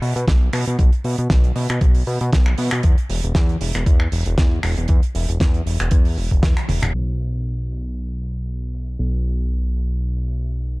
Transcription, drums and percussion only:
0.02 open hi-hat loud
0.16 closed hi-hat medium
0.28 kick loud
0.28 snare loud
0.28 closed hi-hat medium
0.53 finger snap medium
0.53 open hi-hat loud
0.67 closed hi-hat medium
0.79 kick loud
0.79 closed hi-hat medium
0.93 closed hi-hat medium
1.04 open hi-hat loud
1.18 closed hi-hat medium
1.30 kick loud
1.30 snare loud
1.30 closed hi-hat medium
1.44 closed hi-hat medium
1.56 open hi-hat loud
1.69 finger snap medium
1.69 closed hi-hat medium
1.81 kick loud
1.81 closed hi-hat medium
1.95 open hi-hat medium
2.07 open hi-hat loud
2.21 closed hi-hat medium
2.33 kick loud
2.33 snare loud
2.33 closed hi-hat medium
2.46 finger snap medium
2.58 open hi-hat loud
2.71 finger snap medium
2.71 closed hi-hat medium
2.83 kick loud
2.83 closed hi-hat medium
2.98 closed hi-hat medium
3.10 open hi-hat loud
3.24 closed hi-hat medium
3.35 kick loud
3.35 snare loud
3.35 closed hi-hat medium
3.49 closed hi-hat soft
3.61 open hi-hat loud
3.75 finger snap medium
3.75 closed hi-hat medium
3.86 kick loud
3.86 closed hi-hat medium
4.00 finger snap medium
4.12 open hi-hat loud
4.26 closed hi-hat medium
4.38 kick loud
4.38 snare loud
4.38 closed hi-hat medium
4.63 finger snap medium
4.63 open hi-hat loud
4.78 closed hi-hat medium
4.88 kick loud
4.88 closed hi-hat medium
5.03 closed hi-hat medium
5.15 open hi-hat loud
5.29 closed hi-hat medium
5.40 kick loud
5.40 snare loud
5.40 closed hi-hat medium
5.54 closed hi-hat medium
5.67 open hi-hat loud
5.80 finger snap medium
5.80 closed hi-hat medium
5.91 kick loud
5.91 closed hi-hat medium
6.05 open hi-hat medium
6.18 open hi-hat medium
6.31 kick medium
6.31 closed hi-hat medium
6.43 kick loud
6.43 snare loud
6.43 closed hi-hat medium
6.57 finger snap medium
6.57 closed hi-hat medium
6.69 open hi-hat loud
6.69 high tom medium
6.82 finger snap medium
6.82 closed hi-hat medium
6.82 mid tom medium
6.94 crash medium
7.20 open hi-hat loud
7.20 shaker medium
7.35 shaker soft
7.46 shaker soft
7.60 shaker soft
7.71 open hi-hat loud
7.71 shaker medium
7.85 shaker soft
7.97 shaker soft
8.11 shaker soft
8.23 open hi-hat medium
8.23 shaker medium
8.37 shaker soft
8.49 shaker medium
8.63 shaker soft
8.74 open hi-hat medium
8.74 shaker medium
8.88 shaker soft
9.00 shaker medium
9.15 shaker soft
9.25 open hi-hat loud
9.25 shaker medium
9.40 shaker soft
9.51 shaker medium
9.65 shaker soft
9.76 open hi-hat medium
9.76 shaker medium
9.91 shaker soft
10.03 shaker soft
10.16 open hi-hat medium
10.16 shaker soft
10.28 open hi-hat medium
10.28 shaker medium
10.42 shaker soft
10.54 shaker medium
10.68 shaker soft

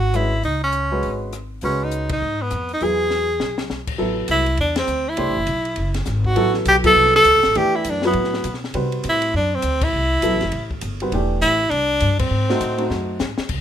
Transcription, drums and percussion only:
0.14 cross-stick medium
0.14 closed hi-hat soft
0.43 open hi-hat soft
0.72 closed hi-hat soft
1.03 open hi-hat soft
1.33 cross-stick medium
1.33 closed hi-hat medium
1.61 open hi-hat soft
1.91 closed hi-hat medium
2.09 kick medium
2.09 ride medium
2.51 cross-stick medium
2.51 closed hi-hat medium
2.69 open hi-hat soft
2.81 open hi-hat soft
3.11 snare soft
3.40 snare medium
3.58 snare medium
3.70 snare medium
3.87 kick medium
3.87 crash medium
4.28 hi-hat pedal medium
4.28 ride medium
4.46 ride soft
4.57 ride medium
4.76 snare medium
4.76 ride medium
4.87 hi-hat pedal medium
5.17 ride medium
5.47 hi-hat pedal soft
5.47 ride medium
5.65 ride soft
5.76 ride medium
5.94 snare soft
5.94 ride medium
6.05 snare soft
6.05 hi-hat pedal medium
6.24 kick medium
6.36 ride medium
6.54 snare soft
6.65 hi-hat pedal medium
6.65 ride medium
6.84 kick medium
6.84 crash medium
7.05 snare soft
7.15 snare soft
7.24 hi-hat pedal medium
7.24 ride medium
7.43 snare medium
7.43 ride soft
7.55 ride medium
7.84 hi-hat pedal medium
7.84 ride medium
8.02 snare medium
8.13 ride medium
8.24 snare soft
8.34 snare soft
8.44 hi-hat pedal medium
8.44 ride medium
8.54 snare soft
8.64 snare soft
8.74 ride medium
8.92 ride soft
9.04 hi-hat pedal medium
9.04 ride medium
9.22 ride medium
9.62 hi-hat pedal medium
9.62 ride medium
9.81 kick medium
9.81 crash medium
10.22 hi-hat pedal medium
10.22 ride medium
10.41 snare soft
10.41 ride soft
10.52 ride medium
10.71 kick medium
10.81 hi-hat pedal soft
10.81 ride medium
11.00 ride soft
11.12 ride medium
11.42 hi-hat pedal medium
11.42 ride medium
11.71 ride medium
12.00 hi-hat pedal medium
12.00 ride medium
12.19 kick medium
12.19 crash medium
12.50 snare medium
12.61 hi-hat pedal medium
12.61 ride medium
12.78 ride soft
12.90 snare soft
13.19 snare medium
13.19 hi-hat pedal medium
13.38 snare medium
13.49 kick medium
13.49 crash medium

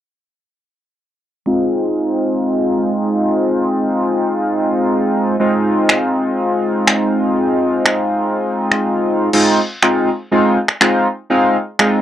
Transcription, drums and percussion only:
5.89 finger snap loud
6.88 finger snap loud
7.86 finger snap loud
8.72 finger snap medium
9.33 crash medium
9.82 finger snap loud
10.68 finger snap medium
10.81 finger snap loud
11.79 finger snap loud

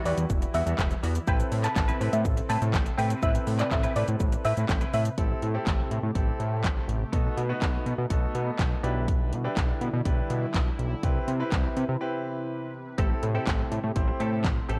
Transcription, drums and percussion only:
0.06 open hi-hat medium
0.06 shaker medium
0.18 closed hi-hat medium
0.18 shaker medium
0.30 kick loud
0.30 shaker medium
0.42 closed hi-hat medium
0.42 shaker medium
0.54 open hi-hat medium
0.54 shaker medium
0.67 closed hi-hat medium
0.67 shaker medium
0.79 kick loud
0.79 snare medium
0.79 clap loud
0.79 shaker medium
0.91 closed hi-hat medium
0.91 shaker medium
1.03 open hi-hat medium
1.03 shaker medium
1.15 closed hi-hat medium
1.15 shaker medium
1.27 kick loud
1.27 shaker medium
1.40 closed hi-hat medium
1.40 shaker medium
1.52 open hi-hat medium
1.52 shaker medium
1.64 clap medium
1.64 closed hi-hat medium
1.64 shaker medium
1.76 kick loud
1.76 snare medium
1.76 clap loud
1.76 shaker medium
1.89 closed hi-hat medium
1.89 shaker medium
2.01 open hi-hat medium
2.01 shaker medium
2.13 closed hi-hat medium
2.13 shaker medium
2.25 kick loud
2.25 shaker medium
2.37 closed hi-hat medium
2.37 shaker medium
2.50 open hi-hat medium
2.50 shaker medium
2.62 closed hi-hat medium
2.62 shaker medium
2.74 kick loud
2.74 snare medium
2.74 clap loud
2.74 shaker medium
2.86 closed hi-hat medium
2.86 shaker soft
2.99 open hi-hat medium
2.99 shaker medium
3.10 closed hi-hat medium
3.10 shaker medium
3.23 kick loud
3.23 shaker medium
3.35 closed hi-hat medium
3.35 shaker medium
3.47 open hi-hat medium
3.47 shaker medium
3.59 clap medium
3.59 closed hi-hat medium
3.59 shaker medium
3.71 kick loud
3.71 snare medium
3.71 clap loud
3.71 shaker medium
3.83 closed hi-hat medium
3.83 shaker soft
3.96 open hi-hat medium
3.96 shaker medium
4.08 closed hi-hat medium
4.08 shaker medium
4.20 kick loud
4.20 shaker medium
4.32 closed hi-hat medium
4.32 shaker medium
4.44 open hi-hat medium
4.44 shaker medium
4.57 closed hi-hat medium
4.57 shaker medium
4.69 kick loud
4.69 snare medium
4.69 clap loud
4.69 shaker medium
4.81 closed hi-hat soft
4.81 shaker soft
4.94 open hi-hat medium
4.94 shaker medium
5.05 closed hi-hat medium
5.05 shaker medium
5.18 kick loud
5.18 closed hi-hat medium
5.42 closed hi-hat medium
5.67 kick loud
5.67 snare medium
5.67 clap loud
5.67 closed hi-hat medium
5.91 closed hi-hat medium
6.15 kick loud
6.15 closed hi-hat medium
6.40 closed hi-hat medium
6.64 kick loud
6.64 snare medium
6.64 clap loud
6.64 closed hi-hat medium
6.89 closed hi-hat medium
7.13 kick loud
7.13 closed hi-hat medium
7.37 closed hi-hat medium
7.62 kick loud
7.62 snare medium
7.62 clap loud
7.62 closed hi-hat medium
7.86 closed hi-hat medium
8.10 kick loud
8.10 closed hi-hat medium
8.35 closed hi-hat medium
8.59 kick loud
8.59 snare medium
8.59 clap loud
8.59 closed hi-hat medium
8.84 closed hi-hat medium
9.08 kick loud
9.08 closed hi-hat medium
9.33 closed hi-hat medium
9.57 kick loud
9.57 snare medium
9.57 clap loud
9.57 closed hi-hat medium
9.81 closed hi-hat medium
10.05 kick loud
10.05 closed hi-hat medium
10.30 closed hi-hat medium
10.54 kick loud
10.54 snare medium
10.54 clap loud
10.54 closed hi-hat medium
10.79 closed hi-hat medium
11.03 kick loud
11.03 closed hi-hat medium
11.28 closed hi-hat medium
11.52 kick loud
11.52 snare medium
11.52 clap loud
11.52 closed hi-hat medium
11.77 closed hi-hat soft
12.98 kick loud
12.98 closed hi-hat medium
13.23 closed hi-hat medium
13.47 kick loud
13.47 snare medium
13.47 clap loud
13.47 closed hi-hat medium
13.72 closed hi-hat medium
13.96 kick loud
13.96 closed hi-hat medium
14.20 closed hi-hat medium
14.45 kick loud
14.45 snare medium
14.45 clap loud
14.45 closed hi-hat medium
14.69 closed hi-hat medium

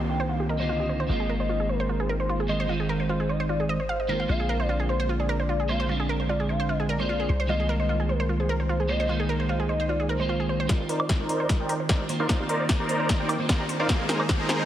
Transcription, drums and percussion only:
10.69 kick medium
10.69 snare soft
10.69 closed hi-hat medium
10.89 closed hi-hat medium
11.00 high woodblock medium
11.09 kick loud
11.09 snare soft
11.09 closed hi-hat medium
11.29 closed hi-hat medium
11.49 kick medium
11.49 snare medium
11.49 closed hi-hat medium
11.69 closed hi-hat medium
11.89 kick loud
11.89 snare medium
11.89 closed hi-hat medium
12.09 closed hi-hat medium
12.29 kick medium
12.29 snare medium
12.29 closed hi-hat medium
12.49 closed hi-hat medium
12.69 kick loud
12.69 snare medium
12.69 closed hi-hat medium
12.89 closed hi-hat medium
13.09 kick loud
13.09 snare medium
13.09 closed hi-hat medium
13.29 closed hi-hat medium
13.29 high woodblock medium
13.49 kick loud
13.49 snare medium
13.49 closed hi-hat medium
13.69 closed hi-hat medium
13.89 kick medium
13.89 snare medium
13.89 closed hi-hat medium
14.09 snare medium
14.09 closed hi-hat medium
14.20 high woodblock medium
14.29 kick loud
14.29 snare medium
14.29 closed hi-hat medium
14.49 snare medium
14.49 closed hi-hat medium

